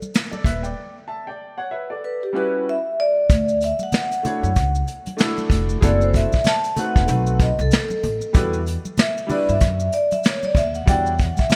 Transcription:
0.02 high conga, maracas
0.14 snare, closed hi-hat, maracas
0.31 grand piano A4 D5, high conga, maracas
0.44 upright bass D#1, grand piano B4 E5, kick, closed hi-hat, low conga, maracas
0.63 grand piano D5 G5, maracas
1.08 grand piano E5 A5
1.27 grand piano D5 G5
1.57 grand piano C#5 F#5
1.71 grand piano B4 E5
1.90 grand piano A4 D5
2.04 vibraphone B4
2.23 vibraphone G4
2.33 grand piano G3 C#4 E4 F#4 B4, vibraphone B4
2.69 vibraphone E5
3.00 vibraphone D5
3.30 upright bass D2, kick, closed hi-hat, maracas
3.48 maracas
3.61 vibraphone E5, closed hi-hat, maracas
3.79 vibraphone F#5, high conga, maracas
3.92 snare, closed hi-hat, low conga, maracas
4.11 closed hi-hat, maracas
4.23 grand piano A3 D4 E4 F#4 C#5, closed hi-hat, low conga, maracas
4.43 upright bass F#2, maracas
4.56 upright bass C#2, kick, closed hi-hat, maracas
4.75 maracas
4.88 closed hi-hat, maracas
5.06 closed hi-hat, high conga, maracas
5.17 grand piano A3 D4 E4 F#4 A4, snare, closed hi-hat, maracas
5.38 high conga, maracas
5.50 upright bass F1, kick, closed hi-hat, low conga, maracas
5.69 maracas
5.81 upright bass F#1, grand piano C4 E4 F#4 G#4 A4, vibraphone D5, kick, closed hi-hat, maracas
6.01 vibraphone C5, maracas
6.14 vibraphone E5, kick, closed hi-hat, maracas
6.32 kick, high conga, maracas
6.44 vibraphone A5, snare, closed hi-hat, low conga, maracas
6.64 closed hi-hat, maracas
6.76 grand piano A3 C4 D#4 F#4 B4, vibraphone F#5, closed hi-hat, low conga, maracas
6.96 upright bass E1, kick, maracas
7.06 upright bass B1, grand piano A3 C4 D#4 F#4 B4, closed hi-hat, maracas
7.27 maracas
7.39 vibraphone D#5, kick, closed hi-hat, maracas
7.59 upright bass C2, vibraphone A4, high conga, maracas
7.71 snare, closed hi-hat, maracas
7.90 high conga, maracas
8.03 upright bass A1, closed hi-hat, low conga, maracas
8.21 maracas
8.33 upright bass E2, grand piano G3 D4 E4 F#4 B4, kick, closed hi-hat, maracas
8.53 maracas
8.67 closed hi-hat, maracas
8.85 high conga, maracas
8.97 vibraphone E5, snare, closed hi-hat, low conga, maracas
9.18 maracas
9.27 grand piano G3 D4 E4 F#4 B4, open hi-hat, low conga, maracas
9.31 vibraphone D5
9.49 upright bass G2, vibraphone E5, maracas
9.60 upright bass F#2, kick, closed hi-hat, maracas
9.80 maracas
9.92 vibraphone D5, closed hi-hat, maracas
10.11 vibraphone E5, closed hi-hat, high conga, maracas
10.24 vibraphone C#5, snare, closed hi-hat, maracas
10.43 vibraphone D5, high conga, maracas
10.55 upright bass D#2, vibraphone E5, kick, closed hi-hat, low conga, maracas
10.75 vibraphone F#5, maracas
10.86 upright bass E2, grand piano G3 D4 E4 F#4 D5, vibraphone G5, kick, closed hi-hat, maracas
11.06 maracas
11.19 vibraphone F#5, kick, closed hi-hat, maracas
11.37 vibraphone E5, kick, high conga, maracas
11.50 snare, closed hi-hat, low conga, maracas

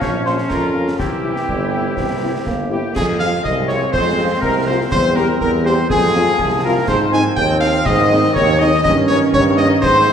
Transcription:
Already playing: trombone section F3
0.00 tuba A#1, woodwind section C#4, trombone section C#4, flute section C#5, cornet C#5, concert bass drum, snare
0.24 french horn section F3 C#4 F4, flute section C5, cornet C5, snare
0.38 snare
0.48 tuba F2, woodwind section F4, cornet A#4, flute section A#4, concert bass drum, snare
0.75 french horn section F3 C#4 F4
0.88 snare
0.98 tuba C2, trombone section E3 C4, woodwind section E4, flute section G4, cornet G4, concert bass drum, snare
1.23 french horn section G3 C4 E4
1.36 snare
1.48 tuba G1, euphonium G3, concert bass drum
1.72 french horn section G3 C4 E4
1.97 tuba C2, euphonium C4, concert bass drum, snare
2.21 french horn section G3 C4 E4
2.46 tuba G1, euphonium A#3, concert bass drum, snare
2.69 french horn section G3 C4 E4, woodwind section G4, flute section G4, cornet G4
2.94 tuba F2, trombone section G#3 C4, woodwind section G#4, flute section G#4, cornet G#4, concert bass drum, snare, crash
3.19 french horn section G#3 C4 F4, woodwind section F5, cornet F5, flute section F5, snare
3.43 tuba C2, flute section D#5, woodwind section D#5, cornet D#5, concert bass drum
3.67 french horn section G#3 C4 F4, cornet C#5, woodwind section C#5, flute section C#5, snare
3.92 tuba F2, woodwind section C5, cornet C5, flute section C5, concert bass drum, snare
4.18 french horn section G#3 C4 F4
4.41 tuba C2, woodwind section A#4, cornet A#4, flute section A#4, concert bass drum, snare
4.66 french horn section G#3 C4 F4, woodwind section C5, cornet C5, flute section C5
4.91 tuba E2, trombone section G3 C4, woodwind section C5, cornet C5, flute section C5, concert bass drum, snare, crash
5.16 french horn section A#3 C4 G4, woodwind section A#4, cornet A#4, flute section A#4, snare
5.41 tuba E2, woodwind section A#4, cornet A#4, flute section A#4, concert bass drum
5.65 french horn section A#3 C4 G4, woodwind section C5, cornet C5, flute section C5, snare
5.89 tuba F2, trombone section F3, woodwind section G#4, cornet G#4, flute section G#4, concert bass drum, snare
6.15 french horn section G#3 C4 F4
6.39 tuba C2, concert bass drum, snare
6.64 french horn section G#3 C4 F4, woodwind section A#4, flute section A#4, cornet A#4
6.87 tuba G#2, trombone section C4, cornet C5, woodwind section C5, flute section C5, concert bass drum, snare, crash
7.12 french horn section G#3 C4 D#4, woodwind section G#5, cornet G#5, flute section G#5, snare
7.36 tuba D#2, cornet G5, flute section G5, woodwind section G5, concert bass drum
7.60 french horn section G#3 C4 D#4, cornet F5, woodwind section F5, flute section F5, snare
7.85 tuba G#2, trombone section D#3, woodwind section D#5, cornet D#5, flute section D#5, concert bass drum, snare
8.11 french horn section G#3 C4 D#4
8.34 tuba D#2, cornet C#5, woodwind section C#5, flute section C#5, concert bass drum, snare
8.59 french horn section G#3 C4 D#4, cornet D#5, woodwind section D#5, flute section D#5
8.84 tuba G2, trombone section D#3 C#4, cornet D#5, woodwind section D#5, flute section D#5, concert bass drum, snare, crash
9.08 french horn section A#3 C#4 D#4, cornet C#5, flute section C#5, woodwind section C#5, snare
9.33 tuba G2, cornet C#5, woodwind section C#5, flute section C#5, concert bass drum
9.57 french horn section A#3 C#4 D#4, cornet D#5, woodwind section D#5, flute section D#5, snare
9.81 tuba G#2, trombone section C4, cornet C5, woodwind section C5, flute section C5, concert bass drum, snare
10.08 french horn section G#3 C4 D#4

